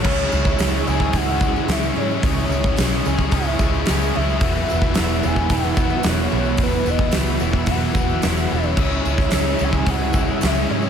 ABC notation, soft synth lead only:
X:1
M:4/4
L:1/8
Q:1/4=110
K:C#m
V:1 name="Soft synth lead"
c3 g f2 e c- | c3 g e2 g e- | e3 g f2 c2 | B d e2 f3 c- |
c3 g f2 e c |]